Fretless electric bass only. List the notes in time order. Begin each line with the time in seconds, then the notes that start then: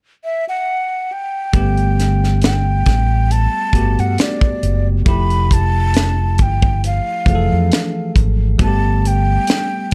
1.54 G1
2.87 A1
3.73 G1
3.99 G2
4.63 F#1
5.07 F1
6.40 G1
7.26 F1
7.52 F2
8.16 G#1
8.60 G1